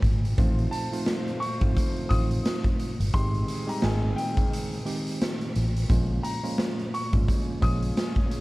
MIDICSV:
0, 0, Header, 1, 6, 480
1, 0, Start_track
1, 0, Tempo, 689655
1, 263, Time_signature, 4, 2, 24, 8
1, 5851, End_track
2, 0, Start_track
2, 0, Title_t, "Upright piano"
2, 0, Program_c, 0, 0
2, 0, Note_on_c, 0, 79, 93
2, 232, Note_off_c, 0, 79, 0
2, 495, Note_on_c, 0, 81, 80
2, 715, Note_off_c, 0, 81, 0
2, 975, Note_on_c, 0, 85, 87
2, 1102, Note_off_c, 0, 85, 0
2, 1455, Note_on_c, 0, 87, 85
2, 1814, Note_off_c, 0, 87, 0
2, 2185, Note_on_c, 0, 84, 100
2, 2539, Note_off_c, 0, 84, 0
2, 2569, Note_on_c, 0, 82, 75
2, 2658, Note_off_c, 0, 82, 0
2, 2671, Note_on_c, 0, 80, 75
2, 2883, Note_off_c, 0, 80, 0
2, 2897, Note_on_c, 0, 79, 85
2, 4072, Note_off_c, 0, 79, 0
2, 4339, Note_on_c, 0, 82, 82
2, 4557, Note_off_c, 0, 82, 0
2, 4830, Note_on_c, 0, 85, 77
2, 4951, Note_off_c, 0, 85, 0
2, 5306, Note_on_c, 0, 87, 82
2, 5659, Note_off_c, 0, 87, 0
2, 5851, End_track
3, 0, Start_track
3, 0, Title_t, "Saxophone section"
3, 0, Program_c, 1, 65
3, 267, Note_on_c, 1, 57, 86
3, 267, Note_on_c, 1, 65, 93
3, 267, Note_on_c, 1, 72, 101
3, 1917, Note_off_c, 1, 57, 0
3, 1917, Note_off_c, 1, 65, 0
3, 1917, Note_off_c, 1, 72, 0
3, 2185, Note_on_c, 1, 60, 85
3, 2186, Note_on_c, 1, 51, 94
3, 2186, Note_on_c, 1, 68, 101
3, 3836, Note_off_c, 1, 51, 0
3, 3836, Note_off_c, 1, 60, 0
3, 3836, Note_off_c, 1, 68, 0
3, 5067, Note_on_c, 1, 53, 82
3, 5067, Note_on_c, 1, 61, 91
3, 5067, Note_on_c, 1, 68, 94
3, 5851, Note_off_c, 1, 53, 0
3, 5851, Note_off_c, 1, 61, 0
3, 5851, Note_off_c, 1, 68, 0
3, 5851, End_track
4, 0, Start_track
4, 0, Title_t, "Tine electric piano"
4, 0, Program_c, 2, 4
4, 262, Note_on_c, 2, 53, 97
4, 264, Note_on_c, 2, 57, 87
4, 265, Note_on_c, 2, 60, 88
4, 267, Note_on_c, 2, 63, 88
4, 268, Note_on_c, 2, 65, 105
4, 607, Note_off_c, 2, 53, 0
4, 608, Note_off_c, 2, 57, 0
4, 609, Note_off_c, 2, 60, 0
4, 609, Note_off_c, 2, 63, 0
4, 610, Note_off_c, 2, 65, 0
4, 641, Note_on_c, 2, 53, 93
4, 643, Note_on_c, 2, 57, 86
4, 644, Note_on_c, 2, 60, 80
4, 646, Note_on_c, 2, 63, 87
4, 648, Note_on_c, 2, 65, 109
4, 959, Note_off_c, 2, 53, 0
4, 960, Note_off_c, 2, 57, 0
4, 960, Note_off_c, 2, 60, 0
4, 961, Note_off_c, 2, 63, 0
4, 962, Note_off_c, 2, 65, 0
4, 1118, Note_on_c, 2, 53, 92
4, 1119, Note_on_c, 2, 57, 86
4, 1120, Note_on_c, 2, 60, 89
4, 1123, Note_on_c, 2, 63, 82
4, 1124, Note_on_c, 2, 65, 110
4, 1437, Note_off_c, 2, 53, 0
4, 1438, Note_off_c, 2, 57, 0
4, 1438, Note_off_c, 2, 60, 0
4, 1440, Note_off_c, 2, 63, 0
4, 1440, Note_off_c, 2, 65, 0
4, 1459, Note_on_c, 2, 53, 100
4, 1461, Note_on_c, 2, 57, 78
4, 1462, Note_on_c, 2, 60, 88
4, 1463, Note_on_c, 2, 63, 92
4, 1465, Note_on_c, 2, 65, 107
4, 2023, Note_off_c, 2, 53, 0
4, 2024, Note_off_c, 2, 57, 0
4, 2025, Note_off_c, 2, 60, 0
4, 2026, Note_off_c, 2, 63, 0
4, 2026, Note_off_c, 2, 65, 0
4, 2189, Note_on_c, 2, 51, 98
4, 2190, Note_on_c, 2, 56, 93
4, 2192, Note_on_c, 2, 60, 83
4, 2193, Note_on_c, 2, 63, 89
4, 2195, Note_on_c, 2, 67, 108
4, 2530, Note_off_c, 2, 51, 0
4, 2531, Note_off_c, 2, 56, 0
4, 2532, Note_off_c, 2, 60, 0
4, 2533, Note_off_c, 2, 63, 0
4, 2533, Note_off_c, 2, 67, 0
4, 2550, Note_on_c, 2, 55, 86
4, 2553, Note_on_c, 2, 56, 85
4, 2554, Note_on_c, 2, 60, 83
4, 2556, Note_on_c, 2, 63, 77
4, 2557, Note_on_c, 2, 67, 100
4, 2653, Note_off_c, 2, 56, 0
4, 2655, Note_off_c, 2, 60, 0
4, 2656, Note_off_c, 2, 63, 0
4, 2660, Note_on_c, 2, 51, 107
4, 2661, Note_on_c, 2, 56, 89
4, 2663, Note_on_c, 2, 60, 87
4, 2665, Note_on_c, 2, 63, 77
4, 2666, Note_on_c, 2, 68, 100
4, 2680, Note_off_c, 2, 55, 0
4, 2683, Note_off_c, 2, 67, 0
4, 3332, Note_off_c, 2, 51, 0
4, 3333, Note_off_c, 2, 56, 0
4, 3334, Note_off_c, 2, 60, 0
4, 3335, Note_off_c, 2, 63, 0
4, 3335, Note_off_c, 2, 68, 0
4, 3377, Note_on_c, 2, 51, 89
4, 3379, Note_on_c, 2, 56, 88
4, 3380, Note_on_c, 2, 60, 91
4, 3382, Note_on_c, 2, 63, 83
4, 3384, Note_on_c, 2, 67, 100
4, 3827, Note_off_c, 2, 51, 0
4, 3828, Note_off_c, 2, 56, 0
4, 3829, Note_off_c, 2, 60, 0
4, 3830, Note_off_c, 2, 63, 0
4, 3831, Note_off_c, 2, 67, 0
4, 4099, Note_on_c, 2, 53, 96
4, 4100, Note_on_c, 2, 56, 93
4, 4103, Note_on_c, 2, 58, 95
4, 4103, Note_on_c, 2, 61, 87
4, 4105, Note_on_c, 2, 65, 99
4, 4445, Note_off_c, 2, 53, 0
4, 4446, Note_off_c, 2, 56, 0
4, 4447, Note_off_c, 2, 58, 0
4, 4448, Note_off_c, 2, 61, 0
4, 4448, Note_off_c, 2, 65, 0
4, 4477, Note_on_c, 2, 53, 93
4, 4478, Note_on_c, 2, 56, 85
4, 4480, Note_on_c, 2, 58, 87
4, 4481, Note_on_c, 2, 61, 88
4, 4482, Note_on_c, 2, 65, 101
4, 4797, Note_off_c, 2, 53, 0
4, 4797, Note_off_c, 2, 56, 0
4, 4798, Note_off_c, 2, 58, 0
4, 4799, Note_off_c, 2, 61, 0
4, 4799, Note_off_c, 2, 65, 0
4, 4958, Note_on_c, 2, 53, 84
4, 4960, Note_on_c, 2, 56, 88
4, 4961, Note_on_c, 2, 58, 89
4, 4963, Note_on_c, 2, 61, 83
4, 4964, Note_on_c, 2, 65, 102
4, 5277, Note_off_c, 2, 53, 0
4, 5278, Note_off_c, 2, 56, 0
4, 5279, Note_off_c, 2, 58, 0
4, 5280, Note_off_c, 2, 61, 0
4, 5280, Note_off_c, 2, 65, 0
4, 5297, Note_on_c, 2, 53, 94
4, 5298, Note_on_c, 2, 56, 87
4, 5300, Note_on_c, 2, 58, 84
4, 5301, Note_on_c, 2, 61, 85
4, 5303, Note_on_c, 2, 65, 105
4, 5851, Note_off_c, 2, 53, 0
4, 5851, Note_off_c, 2, 56, 0
4, 5851, Note_off_c, 2, 58, 0
4, 5851, Note_off_c, 2, 61, 0
4, 5851, Note_off_c, 2, 65, 0
4, 5851, End_track
5, 0, Start_track
5, 0, Title_t, "Fingered electric bass"
5, 0, Program_c, 3, 33
5, 19, Note_on_c, 3, 32, 90
5, 223, Note_off_c, 3, 32, 0
5, 267, Note_on_c, 3, 33, 102
5, 467, Note_off_c, 3, 33, 0
5, 1127, Note_on_c, 3, 32, 96
5, 1210, Note_off_c, 3, 32, 0
5, 1468, Note_on_c, 3, 33, 92
5, 1668, Note_off_c, 3, 33, 0
5, 2087, Note_on_c, 3, 31, 90
5, 2170, Note_off_c, 3, 31, 0
5, 2187, Note_on_c, 3, 32, 102
5, 2387, Note_off_c, 3, 32, 0
5, 2669, Note_on_c, 3, 32, 87
5, 2868, Note_off_c, 3, 32, 0
5, 3870, Note_on_c, 3, 33, 102
5, 4069, Note_off_c, 3, 33, 0
5, 4107, Note_on_c, 3, 34, 100
5, 4307, Note_off_c, 3, 34, 0
5, 4966, Note_on_c, 3, 32, 93
5, 5050, Note_off_c, 3, 32, 0
5, 5309, Note_on_c, 3, 34, 89
5, 5508, Note_off_c, 3, 34, 0
5, 5851, End_track
6, 0, Start_track
6, 0, Title_t, "Drums"
6, 17, Note_on_c, 9, 36, 86
6, 26, Note_on_c, 9, 42, 76
6, 86, Note_off_c, 9, 36, 0
6, 96, Note_off_c, 9, 42, 0
6, 173, Note_on_c, 9, 42, 57
6, 242, Note_off_c, 9, 42, 0
6, 264, Note_on_c, 9, 36, 115
6, 267, Note_on_c, 9, 42, 88
6, 334, Note_off_c, 9, 36, 0
6, 337, Note_off_c, 9, 42, 0
6, 408, Note_on_c, 9, 42, 37
6, 478, Note_off_c, 9, 42, 0
6, 506, Note_on_c, 9, 42, 85
6, 575, Note_off_c, 9, 42, 0
6, 650, Note_on_c, 9, 42, 53
6, 719, Note_off_c, 9, 42, 0
6, 741, Note_on_c, 9, 38, 122
6, 750, Note_on_c, 9, 42, 86
6, 810, Note_off_c, 9, 38, 0
6, 819, Note_off_c, 9, 42, 0
6, 888, Note_on_c, 9, 42, 36
6, 958, Note_off_c, 9, 42, 0
6, 992, Note_on_c, 9, 42, 70
6, 1061, Note_off_c, 9, 42, 0
6, 1120, Note_on_c, 9, 42, 51
6, 1123, Note_on_c, 9, 36, 95
6, 1190, Note_off_c, 9, 42, 0
6, 1193, Note_off_c, 9, 36, 0
6, 1229, Note_on_c, 9, 36, 98
6, 1236, Note_on_c, 9, 42, 99
6, 1299, Note_off_c, 9, 36, 0
6, 1306, Note_off_c, 9, 42, 0
6, 1366, Note_on_c, 9, 42, 36
6, 1436, Note_off_c, 9, 42, 0
6, 1466, Note_on_c, 9, 36, 90
6, 1466, Note_on_c, 9, 42, 81
6, 1535, Note_off_c, 9, 36, 0
6, 1536, Note_off_c, 9, 42, 0
6, 1606, Note_on_c, 9, 42, 51
6, 1676, Note_off_c, 9, 42, 0
6, 1709, Note_on_c, 9, 42, 102
6, 1710, Note_on_c, 9, 38, 108
6, 1778, Note_off_c, 9, 42, 0
6, 1780, Note_off_c, 9, 38, 0
6, 1840, Note_on_c, 9, 36, 89
6, 1845, Note_on_c, 9, 42, 35
6, 1910, Note_off_c, 9, 36, 0
6, 1915, Note_off_c, 9, 42, 0
6, 1946, Note_on_c, 9, 42, 74
6, 2016, Note_off_c, 9, 42, 0
6, 2092, Note_on_c, 9, 42, 57
6, 2162, Note_off_c, 9, 42, 0
6, 2184, Note_on_c, 9, 36, 120
6, 2187, Note_on_c, 9, 42, 87
6, 2254, Note_off_c, 9, 36, 0
6, 2256, Note_off_c, 9, 42, 0
6, 2327, Note_on_c, 9, 42, 37
6, 2397, Note_off_c, 9, 42, 0
6, 2424, Note_on_c, 9, 42, 81
6, 2493, Note_off_c, 9, 42, 0
6, 2568, Note_on_c, 9, 42, 53
6, 2637, Note_off_c, 9, 42, 0
6, 2660, Note_on_c, 9, 38, 119
6, 2669, Note_on_c, 9, 42, 86
6, 2729, Note_off_c, 9, 38, 0
6, 2738, Note_off_c, 9, 42, 0
6, 2910, Note_on_c, 9, 42, 69
6, 2980, Note_off_c, 9, 42, 0
6, 3040, Note_on_c, 9, 42, 51
6, 3043, Note_on_c, 9, 36, 93
6, 3110, Note_off_c, 9, 42, 0
6, 3113, Note_off_c, 9, 36, 0
6, 3155, Note_on_c, 9, 42, 94
6, 3225, Note_off_c, 9, 42, 0
6, 3287, Note_on_c, 9, 42, 37
6, 3356, Note_off_c, 9, 42, 0
6, 3386, Note_on_c, 9, 42, 79
6, 3456, Note_off_c, 9, 42, 0
6, 3527, Note_on_c, 9, 42, 50
6, 3597, Note_off_c, 9, 42, 0
6, 3629, Note_on_c, 9, 42, 102
6, 3631, Note_on_c, 9, 38, 110
6, 3699, Note_off_c, 9, 42, 0
6, 3700, Note_off_c, 9, 38, 0
6, 3765, Note_on_c, 9, 42, 35
6, 3835, Note_off_c, 9, 42, 0
6, 3866, Note_on_c, 9, 42, 77
6, 3936, Note_off_c, 9, 42, 0
6, 4013, Note_on_c, 9, 42, 59
6, 4082, Note_off_c, 9, 42, 0
6, 4105, Note_on_c, 9, 36, 118
6, 4108, Note_on_c, 9, 42, 91
6, 4174, Note_off_c, 9, 36, 0
6, 4178, Note_off_c, 9, 42, 0
6, 4347, Note_on_c, 9, 42, 83
6, 4416, Note_off_c, 9, 42, 0
6, 4491, Note_on_c, 9, 42, 54
6, 4560, Note_off_c, 9, 42, 0
6, 4581, Note_on_c, 9, 38, 120
6, 4590, Note_on_c, 9, 42, 89
6, 4651, Note_off_c, 9, 38, 0
6, 4660, Note_off_c, 9, 42, 0
6, 4728, Note_on_c, 9, 42, 35
6, 4798, Note_off_c, 9, 42, 0
6, 4833, Note_on_c, 9, 42, 71
6, 4902, Note_off_c, 9, 42, 0
6, 4961, Note_on_c, 9, 42, 51
6, 4964, Note_on_c, 9, 36, 91
6, 5031, Note_off_c, 9, 42, 0
6, 5033, Note_off_c, 9, 36, 0
6, 5069, Note_on_c, 9, 36, 98
6, 5076, Note_on_c, 9, 42, 100
6, 5139, Note_off_c, 9, 36, 0
6, 5146, Note_off_c, 9, 42, 0
6, 5306, Note_on_c, 9, 36, 95
6, 5306, Note_on_c, 9, 42, 82
6, 5375, Note_off_c, 9, 36, 0
6, 5376, Note_off_c, 9, 42, 0
6, 5446, Note_on_c, 9, 42, 51
6, 5516, Note_off_c, 9, 42, 0
6, 5549, Note_on_c, 9, 42, 100
6, 5550, Note_on_c, 9, 38, 113
6, 5618, Note_off_c, 9, 42, 0
6, 5620, Note_off_c, 9, 38, 0
6, 5680, Note_on_c, 9, 36, 93
6, 5686, Note_on_c, 9, 42, 35
6, 5750, Note_off_c, 9, 36, 0
6, 5755, Note_off_c, 9, 42, 0
6, 5786, Note_on_c, 9, 42, 77
6, 5851, Note_off_c, 9, 42, 0
6, 5851, End_track
0, 0, End_of_file